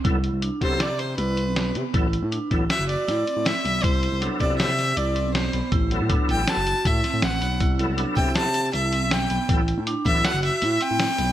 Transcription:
<<
  \new Staff \with { instrumentName = "Violin" } { \time 5/4 \key c \lydian \tempo 4 = 159 r4. c''8 d''8 c''8 b'4. r8 | r2 e''8 d''4. e''4 | c''4 r8 d''8 e''4 d''4 c''4 | r4. g''8 a''4 e''4 fis''4 |
r4. g''8 a''4 e''4 g''4 | r4. e''8 fis''8 e''4 g''4. | }
  \new Staff \with { instrumentName = "Vibraphone" } { \time 5/4 \key c \lydian e'4 d'8 e'8 g'4 e'8 c'4 b8 | e'4 d'8 e'8 fis'4 e'8 c'4 b8 | e'4 d'8 e'8 g'4 e'8 c'4 b8 | e'4 d'8 e'8 fis'4 e'8 c'4 b8 |
e'4 d'8 e'8 g'4 e'8 c'4 b8 | e'4 d'8 e'8 fis'4 e'8 c'4 b8 | }
  \new Staff \with { instrumentName = "Tonewheel organ" } { \time 5/4 \key c \lydian <fis b e' a'>8 r4 <fis b e' a'>8 r2. | <fis b e' a'>8 r4 <fis b e' a'>8 r2. | r4 <fis b e' a'>4 <fis b e' c''>8 r2 r8 | r8 <fis b e' a'>4. <fis b e' a'>8 r2 r8 |
r8 <fis b e' a'>4. <fis b e' a'>8 r2 r8 | <fis b e' a'>8 r4 <fis b e' a'>8 r2. | }
  \new Staff \with { instrumentName = "Analog synth bass" } { \clef bass \time 5/4 \key c \lydian c,8. c,8 r16 c8. c8. c,8. b,,8. c16 r16 | a,,8. a,8 r16 a,,8 r16 fis,,8 r16 a,8 r16 a,8 r16 b,,8 | c,8. c,8 r16 c8. c8. c,8. b,,8. b,,16 r16 | a,,8. a,8 r16 a,,8 r16 fis,,8 r16 a,8 r16 a,16 a,,8 b,,8 |
c,8. c,8 r16 c8. c8. c,8. b,,8. b,,16 r16 | a,,8. a,8 r16 a,,8 r16 fis,,8 r16 a,8 r16 a,8 r16 b,,8 | }
  \new DrumStaff \with { instrumentName = "Drums" } \drummode { \time 5/4 <hh bd>8 hh8 hh8 <hh bd>8 <hh sn>8 hh8 hh8 hh8 <hh sn>8 hh8 | <hh bd>8 hh8 hh8 <hh bd>8 <hh sn>8 hh8 <hh sn>8 hh8 <hh sn>8 hh8 | <hh bd>8 hh8 hh8 <hh bd>8 <hh sn>8 <hh sn>8 hh8 hh8 <hh sn>8 hh8 | <hh bd>8 hh8 <hh bd>8 hh8 <hh sn>8 hh8 <hh bd>8 <hh sn>8 <hh sn>8 hh8 |
<hh bd>8 hh8 hh8 <hh bd>8 <hh sn>8 hh8 hh8 hh8 <hh sn>8 hh8 | <hh bd>8 hh8 hh8 <hh bd>8 <hh sn>8 hh8 hh8 hh8 <hh sn>8 <hh sn>8 | }
>>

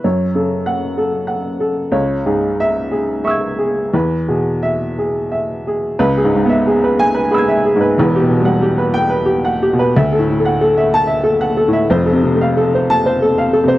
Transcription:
<<
  \new Staff \with { instrumentName = "Upright piano" } { \time 3/4 \key cis \phrygian \tempo 4 = 92 << { r4 fis''4 r4 | r4 e''4 <cis''' e''' gis'''>4 | r4 e''4 r4 | r4. gis''8 <b'' e''' gis'''>4 |
r4. g''8 r4 | r4. a''8 r4 | r4. a''8 r4 | } \\ { cis''8 a'8. r16 a'8 fis''8 a'8 | cis''8 gis'8. r16 gis'8 e''8 gis'8 | b'8 gis'8. r16 gis'8 e''8 gis'8 | b'16 gis'16 gis,16 e''16 gis'16 b'8 b'16 gis'16 e''16 gis'16 b'16 |
b'16 g'16 b,16 fis''16 g'16 b'8 b'16 g'16 fis''16 g'16 b'16 | e''16 a'16 a,16 fis''16 a'16 e''8 e''16 a'16 fis''16 a'16 e''16 | c''16 a'16 c16 f''16 a'16 c''8 c''16 a'16 f''16 a'16 c''16 | } >> }
  \new Staff \with { instrumentName = "Upright piano" } { \clef bass \time 3/4 \key cis \phrygian fis,8 cis4 r4. | cis,8 gis,4 r4. | e,8 b,4 r4. | \tuplet 3/2 { cis,8 gis,8 b8 } r4 \tuplet 3/2 { r4 gis,8 } |
\tuplet 3/2 { <e,, e,>8 b,8 g8 } r4 \tuplet 3/2 { r4 b,8 } | \tuplet 3/2 { d,8 a,8 a8 } r4 \tuplet 3/2 { r4 a,8 } | \tuplet 3/2 { <f,, f,>8 c8 a8 } r4 \tuplet 3/2 { r4 c8 } | }
>>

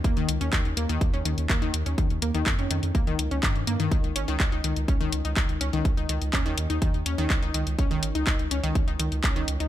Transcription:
<<
  \new Staff \with { instrumentName = "Synth pluck" } { \clef bass \time 4/4 \key des \lydian \tempo 4 = 124 bes16 ees16 r16 des'16 ees16 r16 bes16 ees16 r16 des'16 ees16 r16 bes16 ees16 r16 des'16 | ees16 r16 bes16 ees16 r16 des'16 ees16 r16 bes16 ees16 r16 des'16 ees16 r16 bes16 ees16 | ees16 r16 des'16 ees16 r16 ees'16 ees16 r16 des'16 ees16 r16 ees'16 ees16 r16 des'16 ees16 | r16 ees'16 ees16 r16 des'16 ees16 r16 ees'16 ees16 r16 des'16 ees16 r16 ees'16 ees16 r16 |
des'16 ees16 r16 ees'16 ees16 r16 des'16 ees16 r16 ees'16 ees16 r16 des'16 ees16 r16 ees'16 | }
  \new Staff \with { instrumentName = "Analog synth bass" } { \clef bass \time 4/4 \key des \lydian ees,16 ees,16 des,16 ees,16 ees,16 ees,16 ees,16 ees,16 ees,16 ees,16 ees,16 ees,16 ees,16 ees,16 ees,16 ees,16 | ees,16 ees,16 ees,16 ees,16 f,16 f,16 f,16 f,16 des,16 des,16 des,16 des,16 g,16 g,16 g,16 g,16 | des,16 des,16 aes,,16 des,16 des,16 des,16 des,16 des,16 des,16 des,16 des,16 des,16 des,16 des,16 des,16 des,16 | des,16 des,16 des,16 des,16 ees,16 ees,16 ees,16 ees,16 ees,16 ees,16 ees,16 ees,16 des,16 des,16 des,16 des,16 |
des,16 des,16 aes,,16 des,16 des,16 des,16 des,16 des,16 des,16 des,16 des,16 des,16 des,16 des,16 des,16 des,16 | }
  \new DrumStaff \with { instrumentName = "Drums" } \drummode { \time 4/4 <hh bd>16 hh16 hh16 hh16 <hc hh bd>16 hh16 hh16 hh16 <hh bd>16 hh16 hh16 hh16 <hc hh bd>16 hh16 hh16 hh16 | <hh bd>16 hh16 hh16 hh16 <hc hh bd>16 hh16 hh16 hh16 <hh bd>16 hh16 hh16 hh16 <hc hh bd>16 hh16 hh16 hh16 | <hh bd>16 hh16 hh16 hh16 <hc hh bd>16 hh16 hh16 hh16 <hh bd>16 hh16 hh16 hh16 <hc hh bd>16 hh16 hh16 hh16 | <hh bd>16 hh16 hh16 hh16 <hc hh bd>16 hh16 hh16 hh16 <hh bd>16 hh16 hh16 hh16 <hc hh bd>16 hh16 hh16 hh16 |
<hh bd>16 hh16 hh16 hh16 <hc hh bd>16 hh16 hh16 hh16 <hh bd>16 hh16 hh16 hh16 <hc hh bd>16 hh16 hh16 hh16 | }
>>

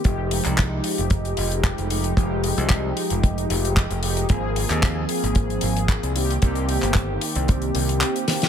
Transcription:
<<
  \new Staff \with { instrumentName = "Analog polysynth" } { \time 4/4 \key f \minor \tempo 4 = 113 <f aes ees' g'>2.~ <f aes ees' g'>8 <f aes ees' g'>8 | <f aes ees' g'>2.~ <f aes ees' g'>8 <f aes ees' g'>8 | <f bes c' aes'>2.~ <f bes c' aes'>8 <ees bes c' g'>8 | <ees bes c' g'>2.~ <ees bes c' g'>8 <ees bes c' g'>8 | }
  \new Staff \with { instrumentName = "Picked electric bass" } { \clef bass \time 4/4 \key f \minor f,,8. c,8. r16 f,,8. f,,8. f,,8. | f,,8. c,8. r16 f,,8. f,,8. f,,8. | aes,,8. ees,8. r16 aes,,8. aes,,8. c,8. | c,8. g,,8. r16 c,8. c,8 r4 | }
  \new DrumStaff \with { instrumentName = "Drums" } \drummode { \time 4/4 <hh bd>8 hho16 <hc hh>16 <hc hh bd>8 hho16 hh16 <hh bd>16 hh16 hho16 hh16 <hc hh bd>16 hh16 hho16 hh16 | <hh bd>8 hho16 hh16 <hc hh bd>8 hho16 hh16 <hh bd>16 hh16 hho16 hh16 <hc hh bd>16 hh16 hho16 hh16 | <hh bd>8 hho16 <hc hh>16 <hc hh bd>8 hho16 hh16 <hh bd>16 hh16 hho16 hh16 <hc hh bd>16 hh16 hho16 hh16 | <hh bd>16 hh16 hho16 <hc hh>16 <hc hh bd>8 hho16 hh16 <hh bd>16 hh16 hho16 hh16 <hc hh>16 hh16 <hho sn>16 <hh sn>16 | }
>>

